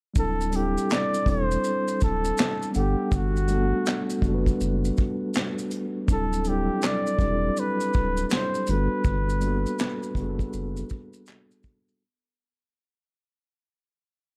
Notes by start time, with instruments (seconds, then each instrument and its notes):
0.14 sub bass D1, tine electric piano G3 C4 D4, kick, shaker
0.19 tine electric piano E4 A4, flugelhorn A4
0.41 shaker
0.50 tine electric piano G3 C4 D4, closed hi-hat, shaker
0.56 tine electric piano E4 A4, flugelhorn G4
0.78 shaker
0.90 flugelhorn D5, snare, clap, shaker
1.14 shaker
1.25 sub bass E1, tine electric piano G3 C4 D4, kick, closed hi-hat, shaker
1.30 tine electric piano E4 A4, flugelhorn C5
1.51 shaker
1.64 shaker
1.88 shaker
2.01 sub bass D1, flugelhorn A4, kick, closed hi-hat, shaker
2.25 shaker
2.38 snare, clap, shaker
2.62 shaker
2.71 tine electric piano G3 B3 D4, closed hi-hat, shaker
2.76 sub bass G1, flugelhorn G4, tine electric piano A4 F#5
3.12 sub bass G1, kick, shaker
3.16 flugelhorn F#4
3.36 shaker
3.47 tine electric piano G3 A3 D4, closed hi-hat, shaker
3.52 tine electric piano B3 F#4 A4
3.86 snare, clap, shaker
4.10 shaker
4.21 sub bass F#1, tine electric piano G3 B3 D4, kick, closed hi-hat, shaker
4.26 tine electric piano F#4 A4
4.34 tine electric piano B4
4.46 kick, shaker
4.61 sub bass F#1, shaker
4.85 shaker
4.97 kick, closed hi-hat, shaker
5.34 snare, clap, shaker
5.59 shaker
5.71 closed hi-hat, shaker
6.06 sub bass D1, tine electric piano G3 C4 D4, kick, shaker
6.11 tine electric piano E4 A4, flugelhorn A4
6.33 shaker
6.43 tine electric piano F#3 C4 D4, closed hi-hat, shaker
6.48 tine electric piano G3 E4 A4, flugelhorn G4
6.82 flugelhorn D5, snare, clap, shaker
7.07 shaker
7.19 sub bass E1, tine electric piano G3 C4 D4, kick, closed hi-hat, shaker
7.24 tine electric piano E4 G4
7.32 tine electric piano A4
7.57 flugelhorn B4, shaker
7.80 shaker
7.94 sub bass D1, kick, closed hi-hat, shaker
8.17 shaker
8.28 flugelhorn B4, shaker
8.32 flugelhorn C5, snare, clap
8.55 shaker
8.66 sub bass G1, tine electric piano G3 A3 D4, closed hi-hat, shaker
8.70 tine electric piano B3 F#4 A4, flugelhorn B4
9.04 sub bass G1, kick, shaker
9.29 shaker
9.40 tine electric piano G3 A#3 D4, closed hi-hat, shaker
9.45 tine electric piano B3 F#4 A4
9.66 shaker
9.79 snare, clap, shaker
10.03 shaker
10.15 sub bass F#1, tine electric piano G3 B3 D4, kick, closed hi-hat, shaker
10.20 tine electric piano F#4 G#4
10.28 tine electric piano A4
10.39 kick, shaker
10.53 sub bass F#1, shaker
10.77 shaker
10.89 kick, closed hi-hat, shaker
11.13 shaker
11.26 snare, clap, shaker
11.51 shaker
11.63 kick, closed hi-hat, shaker
11.88 shaker